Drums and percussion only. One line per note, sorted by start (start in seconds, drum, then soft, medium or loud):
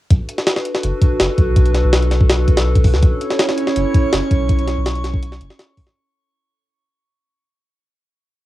0.10 kick loud
0.10 closed hi-hat medium
0.28 closed hi-hat medium
0.38 snare soft
0.46 snare loud
0.46 closed hi-hat medium
0.56 snare medium
0.65 closed hi-hat medium
0.74 snare soft
0.83 closed hi-hat medium
1.02 kick loud
1.02 closed hi-hat medium
1.20 snare loud
1.20 closed hi-hat medium
1.38 kick medium
1.38 closed hi-hat medium
1.56 kick loud
1.56 closed hi-hat medium
1.66 closed hi-hat soft
1.75 snare soft
1.75 closed hi-hat medium
1.93 snare loud
1.93 closed hi-hat medium
2.03 closed hi-hat soft
2.12 snare soft
2.12 closed hi-hat medium
2.21 kick loud
2.30 snare loud
2.30 closed hi-hat medium
2.48 kick medium
2.48 closed hi-hat medium
2.57 snare loud
2.57 closed hi-hat medium
2.76 kick medium
2.76 closed hi-hat medium
2.85 kick medium
2.85 open hi-hat medium
2.94 snare soft
3.03 kick loud
3.03 closed hi-hat medium
3.21 closed hi-hat medium
3.31 snare soft
3.39 snare loud
3.39 closed hi-hat medium
3.49 snare medium
3.58 closed hi-hat medium
3.67 snare soft
3.76 closed hi-hat medium
3.94 kick loud
3.94 closed hi-hat medium
4.13 snare loud
4.13 closed hi-hat medium
4.31 kick loud
4.31 closed hi-hat medium
4.49 kick loud
4.49 closed hi-hat medium
4.59 closed hi-hat soft
4.68 snare soft
4.68 closed hi-hat medium
4.86 snare loud
4.86 closed hi-hat medium
4.95 closed hi-hat soft
5.04 snare soft
5.04 closed hi-hat medium
5.14 kick loud
5.23 closed hi-hat medium
5.32 snare soft
5.41 closed hi-hat medium
5.50 snare soft
5.59 snare loud
5.59 closed hi-hat medium
5.77 kick loud
5.77 open hi-hat medium
5.87 snare soft